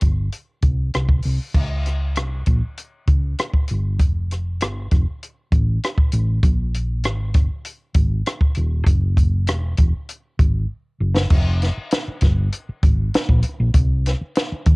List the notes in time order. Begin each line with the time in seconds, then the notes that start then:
0.01 G1, kick, closed hi-hat
0.32 closed hi-hat
0.62 C2, kick, closed hi-hat
0.94 C2, cross-stick, closed hi-hat
1.09 kick
1.22 C2, open hi-hat
1.55 C#2, kick, crash
1.86 cross-stick, closed hi-hat
2.16 C2, cross-stick, closed hi-hat
2.46 A#1, kick, closed hi-hat
2.77 closed hi-hat
3.07 C#2, kick, closed hi-hat
3.39 cross-stick, closed hi-hat
3.54 kick
3.68 G1, closed hi-hat
3.99 F1, kick, closed hi-hat
4.31 cross-stick, closed hi-hat
4.60 G1, cross-stick, closed hi-hat
4.91 F1, kick, cross-stick, closed hi-hat
5.23 closed hi-hat
5.52 A1, kick, closed hi-hat
5.84 cross-stick, closed hi-hat
5.98 kick
6.12 A1, closed hi-hat
6.43 A#1, kick, closed hi-hat
6.74 closed hi-hat
7.04 G#1, cross-stick, closed hi-hat
7.34 G1, kick, cross-stick, closed hi-hat
7.65 closed hi-hat
7.94 G#1, kick, closed hi-hat
8.26 cross-stick, closed hi-hat
8.41 kick
8.55 D#1, closed hi-hat
8.86 F#1, kick, closed hi-hat
9.17 kick, closed hi-hat
9.47 E1, cross-stick, closed hi-hat
9.77 E1, kick, closed hi-hat
10.09 closed hi-hat
10.39 G#1, kick, closed hi-hat
11.00 F#1
11.17 snare
11.30 F1, kick, crash
11.62 snare, closed hi-hat
11.77 muted fingered electric bass stroke
11.91 snare, closed hi-hat
12.08 muted fingered electric bass stroke
12.21 G1, kick, snare, closed hi-hat
12.52 closed hi-hat
12.69 muted fingered electric bass stroke
12.83 G#1, kick, closed hi-hat
13.14 muted fingered electric bass stroke, snare, closed hi-hat
13.29 A#1, kick
13.42 closed hi-hat
13.60 A#1
13.74 C2, kick, closed hi-hat
14.06 snare, closed hi-hat
14.21 muted fingered electric bass stroke
14.35 snare, closed hi-hat
14.52 muted fingered electric bass stroke
14.66 D#2, kick, closed hi-hat